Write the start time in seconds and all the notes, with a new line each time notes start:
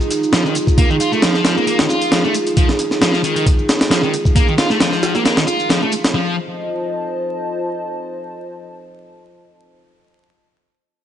Already playing: D#4 F4 G#4
0.01 shaker
0.11 closed hi-hat, shaker
0.23 shaker
0.33 F3, snare, closed hi-hat, shaker
0.45 D#3, shaker
0.55 closed hi-hat, shaker
0.67 kick, shaker
0.78 A#3, kick, closed hi-hat, shaker
0.90 D#3, shaker
1.00 F4, closed hi-hat, shaker
1.12 A3, shaker
1.22 F3, snare, closed hi-hat, shaker
1.34 snare, shaker
1.45 snare, closed hi-hat, shaker
1.57 A#3, shaker
1.67 A#3, closed hi-hat, shaker
1.79 D#3, snare, closed hi-hat, shaker
1.90 F4, shaker
2.02 closed hi-hat, shaker
2.12 F3, snare, closed hi-hat, shaker
2.24 A3, shaker
2.34 closed hi-hat, shaker
2.47 closed hi-hat, shaker
2.57 F3, kick, closed hi-hat, shaker
2.69 snare, shaker
2.79 closed hi-hat, shaker
2.91 snare, shaker
3.01 F3, snare, closed hi-hat, shaker
3.14 snare, shaker
3.23 D#3, closed hi-hat, shaker
3.36 D#3, closed hi-hat, shaker
3.46 kick, closed hi-hat, shaker
3.59 shaker
3.69 snare, closed hi-hat, shaker
3.81 snare, closed hi-hat, shaker
3.91 F3, snare, closed hi-hat, shaker
4.03 D#3, shaker
4.14 closed hi-hat, shaker
4.25 kick, shaker
4.36 A#3, kick, closed hi-hat, shaker
4.48 D#3, shaker
4.58 F4, snare, closed hi-hat, shaker
4.70 A3, snare, shaker
4.80 F3, snare, closed hi-hat, shaker
4.93 snare, shaker
5.03 snare, closed hi-hat, shaker
5.15 A#3, snare, shaker
5.25 A#3, snare, closed hi-hat, shaker
5.37 D#3, snare, closed hi-hat, shaker
5.47 F4, shaker
5.60 shaker
5.69 F3, snare, closed hi-hat, shaker
5.82 A3, shaker
5.92 closed hi-hat, shaker
6.04 snare, closed hi-hat, shaker
6.14 F3 F4 C5 D#5 A5